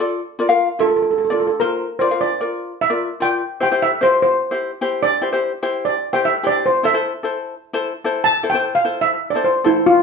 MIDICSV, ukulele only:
0, 0, Header, 1, 2, 480
1, 0, Start_track
1, 0, Tempo, 402145
1, 235, Time_signature, 4, 2, 24, 8
1, 11968, End_track
2, 0, Start_track
2, 0, Title_t, "Ukulele"
2, 0, Program_c, 0, 24
2, 0, Note_on_c, 0, 65, 88
2, 0, Note_on_c, 0, 69, 75
2, 0, Note_on_c, 0, 74, 83
2, 232, Note_off_c, 0, 65, 0
2, 236, Note_off_c, 0, 74, 0
2, 237, Note_off_c, 0, 69, 0
2, 463, Note_on_c, 0, 65, 87
2, 472, Note_on_c, 0, 70, 69
2, 472, Note_on_c, 0, 74, 91
2, 542, Note_off_c, 0, 65, 0
2, 544, Note_off_c, 0, 70, 0
2, 546, Note_off_c, 0, 74, 0
2, 583, Note_on_c, 0, 77, 94
2, 589, Note_on_c, 0, 70, 74
2, 590, Note_on_c, 0, 65, 63
2, 806, Note_off_c, 0, 65, 0
2, 807, Note_off_c, 0, 77, 0
2, 808, Note_off_c, 0, 70, 0
2, 941, Note_on_c, 0, 65, 66
2, 947, Note_on_c, 0, 70, 64
2, 950, Note_on_c, 0, 76, 74
2, 1310, Note_off_c, 0, 65, 0
2, 1312, Note_off_c, 0, 76, 0
2, 1314, Note_off_c, 0, 70, 0
2, 1553, Note_on_c, 0, 74, 78
2, 1562, Note_on_c, 0, 70, 55
2, 1567, Note_on_c, 0, 65, 63
2, 1774, Note_off_c, 0, 65, 0
2, 1774, Note_off_c, 0, 70, 0
2, 1774, Note_off_c, 0, 74, 0
2, 1911, Note_on_c, 0, 65, 71
2, 1913, Note_on_c, 0, 70, 63
2, 1917, Note_on_c, 0, 72, 80
2, 2202, Note_off_c, 0, 70, 0
2, 2204, Note_off_c, 0, 65, 0
2, 2206, Note_off_c, 0, 72, 0
2, 2395, Note_on_c, 0, 65, 73
2, 2402, Note_on_c, 0, 74, 77
2, 2404, Note_on_c, 0, 70, 55
2, 2470, Note_off_c, 0, 65, 0
2, 2471, Note_off_c, 0, 70, 0
2, 2473, Note_off_c, 0, 74, 0
2, 2517, Note_on_c, 0, 65, 79
2, 2519, Note_on_c, 0, 70, 58
2, 2520, Note_on_c, 0, 77, 76
2, 2733, Note_off_c, 0, 70, 0
2, 2735, Note_off_c, 0, 65, 0
2, 2736, Note_off_c, 0, 77, 0
2, 2871, Note_on_c, 0, 74, 66
2, 2877, Note_on_c, 0, 70, 59
2, 2888, Note_on_c, 0, 65, 60
2, 3238, Note_off_c, 0, 70, 0
2, 3239, Note_off_c, 0, 65, 0
2, 3239, Note_off_c, 0, 74, 0
2, 3458, Note_on_c, 0, 74, 66
2, 3463, Note_on_c, 0, 70, 61
2, 3468, Note_on_c, 0, 65, 60
2, 3686, Note_off_c, 0, 65, 0
2, 3687, Note_off_c, 0, 70, 0
2, 3688, Note_off_c, 0, 74, 0
2, 3822, Note_on_c, 0, 65, 75
2, 3825, Note_on_c, 0, 70, 63
2, 3835, Note_on_c, 0, 74, 66
2, 4072, Note_off_c, 0, 65, 0
2, 4075, Note_off_c, 0, 70, 0
2, 4076, Note_off_c, 0, 74, 0
2, 4302, Note_on_c, 0, 72, 78
2, 4305, Note_on_c, 0, 64, 75
2, 4310, Note_on_c, 0, 67, 57
2, 4384, Note_off_c, 0, 64, 0
2, 4385, Note_off_c, 0, 67, 0
2, 4386, Note_off_c, 0, 72, 0
2, 4435, Note_on_c, 0, 72, 81
2, 4440, Note_on_c, 0, 64, 67
2, 4448, Note_on_c, 0, 67, 53
2, 4657, Note_off_c, 0, 64, 0
2, 4657, Note_off_c, 0, 72, 0
2, 4658, Note_off_c, 0, 67, 0
2, 4786, Note_on_c, 0, 72, 74
2, 4790, Note_on_c, 0, 64, 65
2, 4799, Note_on_c, 0, 67, 56
2, 5156, Note_off_c, 0, 67, 0
2, 5157, Note_off_c, 0, 64, 0
2, 5158, Note_off_c, 0, 72, 0
2, 5384, Note_on_c, 0, 72, 74
2, 5391, Note_on_c, 0, 64, 57
2, 5398, Note_on_c, 0, 67, 59
2, 5612, Note_off_c, 0, 72, 0
2, 5613, Note_off_c, 0, 64, 0
2, 5613, Note_off_c, 0, 67, 0
2, 5743, Note_on_c, 0, 64, 89
2, 5748, Note_on_c, 0, 67, 76
2, 5753, Note_on_c, 0, 72, 79
2, 6042, Note_off_c, 0, 64, 0
2, 6045, Note_off_c, 0, 67, 0
2, 6045, Note_off_c, 0, 72, 0
2, 6224, Note_on_c, 0, 64, 77
2, 6226, Note_on_c, 0, 67, 65
2, 6237, Note_on_c, 0, 72, 73
2, 6307, Note_off_c, 0, 64, 0
2, 6309, Note_off_c, 0, 67, 0
2, 6311, Note_off_c, 0, 72, 0
2, 6356, Note_on_c, 0, 72, 79
2, 6359, Note_on_c, 0, 64, 66
2, 6369, Note_on_c, 0, 67, 63
2, 6576, Note_off_c, 0, 64, 0
2, 6578, Note_off_c, 0, 67, 0
2, 6578, Note_off_c, 0, 72, 0
2, 6713, Note_on_c, 0, 67, 66
2, 6715, Note_on_c, 0, 64, 87
2, 6717, Note_on_c, 0, 72, 94
2, 7078, Note_off_c, 0, 64, 0
2, 7080, Note_off_c, 0, 67, 0
2, 7081, Note_off_c, 0, 72, 0
2, 7316, Note_on_c, 0, 72, 75
2, 7322, Note_on_c, 0, 64, 63
2, 7333, Note_on_c, 0, 67, 59
2, 7538, Note_off_c, 0, 64, 0
2, 7538, Note_off_c, 0, 72, 0
2, 7540, Note_off_c, 0, 67, 0
2, 7678, Note_on_c, 0, 67, 71
2, 7683, Note_on_c, 0, 72, 65
2, 7685, Note_on_c, 0, 64, 75
2, 7921, Note_off_c, 0, 72, 0
2, 7922, Note_off_c, 0, 67, 0
2, 7924, Note_off_c, 0, 64, 0
2, 8155, Note_on_c, 0, 64, 69
2, 8165, Note_on_c, 0, 72, 75
2, 8166, Note_on_c, 0, 69, 64
2, 8234, Note_off_c, 0, 64, 0
2, 8235, Note_off_c, 0, 69, 0
2, 8237, Note_off_c, 0, 72, 0
2, 8279, Note_on_c, 0, 64, 84
2, 8286, Note_on_c, 0, 69, 64
2, 8287, Note_on_c, 0, 72, 85
2, 8498, Note_off_c, 0, 64, 0
2, 8498, Note_off_c, 0, 69, 0
2, 8501, Note_off_c, 0, 72, 0
2, 8632, Note_on_c, 0, 69, 64
2, 8640, Note_on_c, 0, 64, 64
2, 8649, Note_on_c, 0, 72, 72
2, 9000, Note_off_c, 0, 69, 0
2, 9001, Note_off_c, 0, 64, 0
2, 9002, Note_off_c, 0, 72, 0
2, 9231, Note_on_c, 0, 64, 91
2, 9238, Note_on_c, 0, 72, 99
2, 9244, Note_on_c, 0, 69, 60
2, 9452, Note_off_c, 0, 64, 0
2, 9456, Note_off_c, 0, 72, 0
2, 9457, Note_off_c, 0, 69, 0
2, 9602, Note_on_c, 0, 69, 79
2, 9608, Note_on_c, 0, 64, 84
2, 9616, Note_on_c, 0, 72, 88
2, 9891, Note_off_c, 0, 64, 0
2, 9891, Note_off_c, 0, 69, 0
2, 9891, Note_off_c, 0, 72, 0
2, 10065, Note_on_c, 0, 69, 72
2, 10067, Note_on_c, 0, 64, 69
2, 10076, Note_on_c, 0, 72, 77
2, 10145, Note_off_c, 0, 64, 0
2, 10146, Note_off_c, 0, 69, 0
2, 10146, Note_off_c, 0, 72, 0
2, 10192, Note_on_c, 0, 64, 75
2, 10200, Note_on_c, 0, 72, 85
2, 10202, Note_on_c, 0, 69, 60
2, 10411, Note_off_c, 0, 64, 0
2, 10415, Note_off_c, 0, 69, 0
2, 10416, Note_off_c, 0, 72, 0
2, 10556, Note_on_c, 0, 64, 73
2, 10559, Note_on_c, 0, 69, 56
2, 10561, Note_on_c, 0, 72, 71
2, 10916, Note_off_c, 0, 69, 0
2, 10917, Note_off_c, 0, 64, 0
2, 10919, Note_off_c, 0, 72, 0
2, 11157, Note_on_c, 0, 69, 69
2, 11163, Note_on_c, 0, 64, 64
2, 11173, Note_on_c, 0, 72, 75
2, 11373, Note_off_c, 0, 64, 0
2, 11373, Note_off_c, 0, 69, 0
2, 11374, Note_off_c, 0, 72, 0
2, 11511, Note_on_c, 0, 69, 80
2, 11520, Note_on_c, 0, 64, 76
2, 11524, Note_on_c, 0, 72, 71
2, 11753, Note_off_c, 0, 69, 0
2, 11754, Note_off_c, 0, 64, 0
2, 11754, Note_off_c, 0, 72, 0
2, 11968, End_track
0, 0, End_of_file